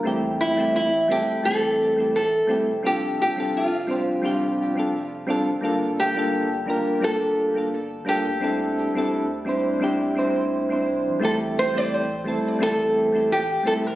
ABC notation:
X:1
M:4/4
L:1/16
Q:"Swing 16ths" 1/4=86
K:Aphr
V:1 name="Nylon-string guitar"
z2 E2 E2 G2 A4 A4 | G2 G2 F4 z8 | z2 G6 A6 G2- | G12 z4 |
A2 c d c4 A4 G2 A B |]
V:2 name="Synth keys"
[G,A,CEG]3 [G,A,CEG]2 z [G,A,CEA]2 [G,A,CEG]3 [G,A,CEG] z2 [G,A,CEG] z | [G,CDFA]3 [G,CDFA]2 z [G,CDFc]2 [G,CDFG]3 [G,CDFA] z2 [G,CDFA] z | [G,B,DFA]3 [G,B,DFA]2 z [G,B,DFB]2 [G,B,DFG]3 [G,B,DFA] z2 [G,B,DFA] z | [G,CDEA]3 [G,CDEA]2 z [G,CDEc]2 [G,CDEG]2 [G,CDEc]3 [G,CDEc]3 |
[G,A,CEG]3 [G,A,CEG]2 z [G,A,CEA]2 [G,A,CEG]3 [G,A,CEG] z2 [G,A,CEG] z |]
V:3 name="Sub bass" clef=bass
A,,,6- A,,, z A,,,6 z F,,,- | F,,,3 F,,,12- F,,, | G,,,6- G,,, z G,,,6 z D,,- | D,,3 D,,8- D,,3 C,, A,,, |
A,,,6- A,,, z A,,,6 z F,,, |]